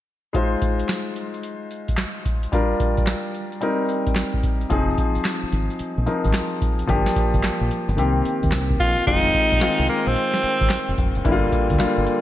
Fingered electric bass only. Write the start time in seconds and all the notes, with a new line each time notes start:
4.71 F1
5.16 muted fingered electric bass stroke
5.43 muted fingered electric bass stroke
5.53 G#1
5.80 muted fingered electric bass stroke
5.98 A#1
6.25 G#1
6.89 G1
7.34 G1
7.61 A#1
7.89 G1
7.98 C2
8.43 D#2
8.53 C2
8.80 A#1
9.07 F1
9.52 A#1
9.79 C2
10.07 A#1
10.44 muted fingered electric bass stroke
10.61 G#1
10.89 F1
10.98 F1
11.16 F#1
11.25 G1
11.70 D2
11.98 G1